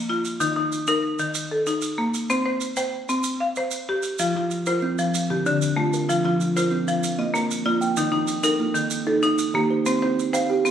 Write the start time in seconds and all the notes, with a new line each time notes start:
0.09 F4
0.25 maracas
0.40 D#3 D#4, maracas
0.56 D#4
0.72 maracas
0.87 D#4 A#4, maracas
1.19 D#3, maracas
1.34 maracas
1.51 A4
1.67 D#4, maracas
1.82 maracas
1.98 A#3
2.14 maracas
2.30 C4 C5, maracas
2.46 C5
2.61 maracas
2.76 C5 G5, maracas
3.09 C4, maracas
3.23 maracas
3.40 F5
3.56 C5, maracas
3.71 maracas
3.89 G4
4.03 maracas
4.19 F3 F4, maracas
4.36 F3 F4
4.51 maracas
4.66 F4 A#4 C5, maracas
4.82 C4
4.98 F3, maracas
5.14 maracas
5.30 D3 G4
5.46 D3 D4, maracas
5.62 maracas
5.77 D3 A3 F4
5.93 A#4, maracas
6.09 F3 F4, maracas
6.25 F3 F4
6.41 maracas
6.56 F4 A#4 C5, maracas
6.71 C4
6.88 F3, maracas
7.04 maracas
7.19 A#3 D#5
7.34 A#3 A#4, maracas
7.51 maracas
7.66 A#3 F4 D5
7.81 G5, maracas
7.97 D#3 D#4, maracas
8.12 D#3 D#4
8.28 maracas
8.43 D#4 A4 A#4, maracas
8.60 A#3
8.74 D#3, maracas
8.90 maracas
9.07 D#4 A4
9.23 D#4, maracas
9.38 maracas
9.54 D#3 A#3 G4
9.70 C5
9.86 C4 C5, maracas
10.02 C4 C5
10.19 maracas
10.33 C5 F5 G5, maracas
10.50 G4
10.65 C4, maracas